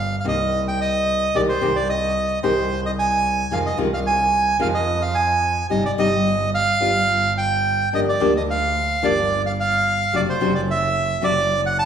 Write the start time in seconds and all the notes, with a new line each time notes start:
Already playing: G1 F5
0.20 F5
0.24 C2 C3 D#3 A#3 C4 G4 D#5
0.68 G5
0.81 D#5
1.34 C2 C3 D#3 G#3 C4 G4 D5
1.49 C5
1.61 C2 C3 D#3 G#3 C4 G4
1.76 D5
1.89 D#5
2.43 C2 C3 D#3 G#3 C4 G4 C5
2.86 D#5
2.99 G#5
3.51 F2 C3 D#3 G#3 C4 F4 F5
3.66 D#5
3.77 C2 C3 D#3 G#3 C4 F4
3.94 F5
4.07 G#5
4.59 F2 C3 D#3 G#3 C4 F4 F5
4.74 D#5
5.02 F5
5.15 G#5
5.69 G1 C3 G3 C4 D#4 G4 D#5
5.85 D5
5.98 G1 C3 G3 C4 D#4 G4 D#5
6.55 F5
6.80 G1 G3 B3 F4
7.38 G5
7.93 G1 D3 F3 A#3 D4 G4 D#5
8.09 D5
8.20 D2 D3 F3 A#3 D4 G4
8.37 D#5
8.50 F5
9.03 G1 D3 F3 A#3 D4 G4 D5
9.46 F5
9.60 F5
10.13 F#1 C3 F#3 A3 D4 F#4 D5
10.30 C5
10.40 F#1 C3 F#3 A3 D4 F#4
10.55 D5
10.71 E5
11.21 F#1 C3 F#3 A3 D4 F#4 D5
11.66 F#5
11.79 A5